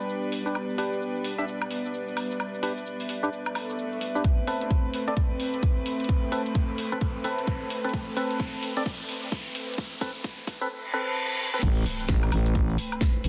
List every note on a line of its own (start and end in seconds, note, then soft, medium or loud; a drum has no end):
0.00 4.20 G3 medium
0.00 4.24 B3 medium
0.00 0.43 D4 medium
0.00 4.20 D4 medium
0.00 0.43 G4 medium
0.00 4.91 G4 medium
0.00 0.43 B4 medium
0.00 4.20 B4 medium
0.00 1.24 D5 medium
0.00 4.25 B5 medium
0.00 shaker medium
0.09 shaker medium
0.23 shaker soft
0.32 open hi-hat loud
0.46 0.57 D4 medium
0.46 0.57 G4 medium
0.46 0.57 B4 medium
0.46 shaker medium
0.55 high woodblock medium
0.55 shaker medium
0.70 shaker soft
0.78 1.35 D4 medium
0.78 1.35 G4 medium
0.78 1.35 B4 loud
0.78 open hi-hat medium
0.93 shaker medium
1.02 shaker medium
1.13 10.70 E5 medium
1.13 shaker soft
1.24 open hi-hat medium
1.38 1.45 D4 medium
1.38 1.45 G4 medium
1.38 1.45 E5 medium
1.38 shaker medium
1.48 shaker medium
1.62 high woodblock medium
1.62 shaker soft
1.71 open hi-hat medium
1.85 shaker medium
1.94 shaker medium
2.08 shaker soft
2.17 open hi-hat loud
2.17 high woodblock medium
2.31 shaker medium
2.40 high woodblock medium
2.40 shaker soft
2.54 shaker soft
2.63 2.73 D4 medium
2.63 2.73 G4 medium
2.63 2.73 B4 medium
2.63 open hi-hat loud
2.77 shaker medium
2.86 shaker medium
3.00 open hi-hat medium
3.00 shaker soft
3.09 open hi-hat loud
3.23 3.29 D4 medium
3.23 3.29 G4 medium
3.23 3.29 B4 loud
3.23 shaker medium
3.32 swell medium
3.32 shaker medium
3.46 high woodblock medium
3.46 shaker soft
3.55 open hi-hat loud
3.55 high woodblock medium
3.70 shaker medium
3.79 shaker medium
3.93 shaker soft
4.01 open hi-hat loud
4.15 4.23 D4 medium
4.15 4.23 G4 medium
4.15 4.23 B4 medium
4.15 shaker medium
4.24 10.67 A3 medium
4.24 10.70 C4 medium
4.24 10.67 C4 medium
4.24 10.67 B4 medium
4.24 kick loud
4.24 closed hi-hat medium
4.24 riser medium
4.47 5.04 C4 medium
4.47 5.04 A4 medium
4.47 5.04 B4 medium
4.47 open hi-hat medium
4.54 10.71 B5 medium
4.61 closed hi-hat medium
4.70 10.71 A4 medium
4.70 kick loud
4.70 closed hi-hat medium
4.94 open hi-hat loud
5.08 5.14 C4 medium
5.08 5.14 A4 medium
5.08 5.14 D5 medium
5.08 closed hi-hat soft
5.17 kick loud
5.17 closed hi-hat medium
5.40 open hi-hat loud
5.54 closed hi-hat soft
5.63 kick loud
5.63 closed hi-hat medium
5.86 open hi-hat loud
6.00 closed hi-hat soft
6.04 closed hi-hat medium
6.09 kick loud
6.09 closed hi-hat medium
6.32 6.42 C4 medium
6.32 6.42 A4 medium
6.32 6.42 B4 medium
6.32 open hi-hat loud
6.46 closed hi-hat soft
6.55 kick loud
6.55 closed hi-hat medium
6.78 open hi-hat loud
6.92 6.99 C4 loud
6.92 6.99 A4 medium
6.92 6.99 B4 loud
6.92 closed hi-hat medium
7.01 kick loud
7.01 closed hi-hat medium
7.24 7.81 C4 medium
7.24 7.81 A4 medium
7.24 7.81 B4 loud
7.24 open hi-hat loud
7.38 closed hi-hat medium
7.47 kick loud
7.47 closed hi-hat medium
7.70 open hi-hat loud
7.84 7.95 C4 medium
7.84 7.95 A4 medium
7.84 7.95 B4 medium
7.84 closed hi-hat soft
7.89 closed hi-hat medium
7.94 kick loud
7.94 closed hi-hat medium
8.17 8.73 C4 medium
8.17 8.73 A4 medium
8.17 8.73 B4 loud
8.17 open hi-hat loud
8.31 closed hi-hat medium
8.40 kick loud
8.40 closed hi-hat medium
8.63 open hi-hat loud
8.77 8.83 C4 medium
8.77 8.83 A4 medium
8.77 8.83 D5 medium
8.77 closed hi-hat soft
8.86 kick loud
8.86 closed hi-hat medium
9.09 open hi-hat loud
9.23 closed hi-hat soft
9.32 kick loud
9.32 closed hi-hat medium
9.55 open hi-hat loud
9.69 closed hi-hat soft
9.74 closed hi-hat medium
9.78 kick loud
9.78 closed hi-hat medium
10.01 10.11 C4 medium
10.01 10.11 A4 medium
10.01 10.11 B4 medium
10.01 kick loud
10.01 open hi-hat loud
10.15 closed hi-hat soft
10.24 kick loud
10.24 closed hi-hat medium
10.47 kick loud
10.47 open hi-hat loud
10.61 10.68 C4 loud
10.61 10.68 A4 medium
10.61 10.68 B4 loud
10.61 closed hi-hat medium
10.70 reverse cymbal medium
10.94 11.50 C4 medium
10.94 11.50 A4 medium
10.94 11.50 B4 loud
11.54 11.62 C4 medium
11.54 11.62 A4 medium
11.54 11.62 B4 loud
11.63 11.84 A1 loud
11.63 13.29 A3 medium
11.63 13.29 C4 medium
11.63 13.29 B4 medium
11.63 kick loud
11.63 closed hi-hat medium
11.63 crash loud
11.63 impact medium
11.63 shaker medium
11.77 shaker soft
11.86 open hi-hat loud
12.00 closed hi-hat medium
12.00 shaker medium
12.09 12.31 A1 loud
12.09 kick loud
12.09 snare loud
12.09 closed hi-hat medium
12.09 shaker medium
12.23 high woodblock medium
12.23 shaker soft
12.32 12.77 A1 loud
12.32 open hi-hat loud
12.32 high woodblock medium
12.46 closed hi-hat medium
12.46 shaker medium
12.55 kick loud
12.55 closed hi-hat medium
12.55 shaker medium
12.69 shaker soft
12.78 open hi-hat loud
12.92 closed hi-hat medium
12.92 high woodblock medium
12.92 shaker medium
13.01 kick loud
13.01 snare loud
13.01 closed hi-hat medium
13.01 shaker medium
13.16 shaker soft
13.24 13.29 A1 medium
13.24 open hi-hat loud